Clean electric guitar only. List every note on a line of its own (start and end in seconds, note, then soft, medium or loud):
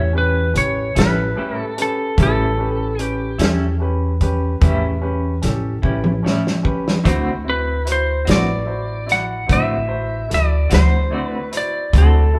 0.95 1.22 G3 soft
0.95 1.21 C#4 soft
0.95 1.20 E4 soft
1.36 1.61 A2 soft
1.36 1.61 G3 soft
1.36 1.62 C#4 soft
1.36 1.62 E4 medium
2.17 2.42 A2 medium
2.17 2.42 G3 medium
2.17 2.43 C#4 medium
2.17 2.43 E4 medium
3.38 3.65 G3 soft
3.38 3.65 C#4 soft
3.38 3.63 E4 medium
4.61 4.86 A2 medium
4.61 4.86 G3 medium
4.61 4.86 C#4 medium
4.61 4.87 E4 medium
5.82 6.09 G3 soft
5.82 6.08 C#4 soft
5.82 6.07 E4 soft
6.23 6.48 A2 medium
6.23 6.49 G3 medium
6.23 6.49 C#4 medium
6.23 6.50 E4 medium
7.04 7.29 D3 medium
7.04 7.30 A3 medium
7.04 7.30 C4 medium
7.04 7.30 F#4 medium
8.25 8.52 A3 soft
8.25 8.52 C4 soft
8.25 8.51 F#4 soft
9.48 9.73 D3 medium
9.48 9.74 A3 medium
9.48 9.74 C4 medium
9.48 9.74 F#4 medium
10.70 10.97 A3 soft
10.70 10.96 C4 soft
10.70 10.95 F#4 soft
11.11 11.36 D3 medium
11.11 11.36 A3 soft
11.11 11.37 C4 soft
11.11 11.37 F#4 soft
11.93 12.17 D3 medium
11.93 12.18 A3 medium
11.93 12.18 C4 medium
11.93 12.19 F#4 medium